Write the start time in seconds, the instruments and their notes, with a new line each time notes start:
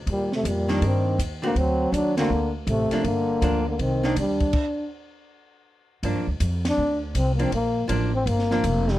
0.06 upright bass D#2, kick, ride
0.10 trombone A#2 G3
0.32 trombone C3 A3, snare
0.44 upright bass F2, trombone A#2, kick, hi-hat pedal, ride
0.48 trombone G3
0.68 hollow-body jazz guitar D#3 G3 A#3 D4, snare, ride
0.81 upright bass G2, trombone D#3 C4, kick, ride
1.18 upright bass D#2, kick, hi-hat pedal, ride
1.42 hollow-body jazz guitar D3 A3 C4 F#4, trombone D3, ride
1.46 trombone A#3
1.55 upright bass D2, trombone F#3 C4, kick, ride
1.92 upright bass D#2, trombone F#3 D4, kick, hi-hat pedal, ride
2.17 hollow-body jazz guitar D3 A3 C4 F#4, trombone D3 A#3, snare, ride
2.30 upright bass D2
2.67 upright bass A1, trombone C3 A3, kick, hi-hat pedal, ride
2.91 hollow-body jazz guitar F3 A#3 D4, muted upright bass stroke, snare, ride
3.04 upright bass G1, trombone D3 A#3, kick, ride
3.42 upright bass D2, hollow-body jazz guitar F3 A#3 D4, kick, hi-hat pedal, ride
3.68 trombone D3 A#3
3.79 upright bass C2, trombone D#3 C4, kick, ride
4.03 hollow-body jazz guitar D#3 A#3 D4, snare
4.16 upright bass D#2, trombone G3 D4, kick, hi-hat pedal, ride
4.40 kick, ride
4.53 kick, crash
6.03 upright bass G2, hollow-body jazz guitar F3 A#3 D4, kick, ride
6.15 upright bass F2
6.27 upright bass D2
6.40 upright bass F2, kick, hi-hat pedal, ride
6.65 snare, ride
6.69 trombone D4
6.77 upright bass D2
7.15 upright bass C2, trombone C4, kick, hi-hat pedal, ride
7.35 hollow-body jazz guitar F3 A#3, trombone A#3, ride
7.40 trombone C4, hollow-body jazz guitar D4
7.52 upright bass A#1, trombone A#3, kick, ride
7.88 upright bass A1, hollow-body jazz guitar F3 A#3 D4, kick, hi-hat pedal, ride
8.15 trombone C4
8.26 upright bass G1, trombone A#3, kick, ride
8.39 snare
8.51 hollow-body jazz guitar F3 A#3 D4, snare
8.64 upright bass F1, kick, hi-hat pedal, ride
8.88 trombone G3, snare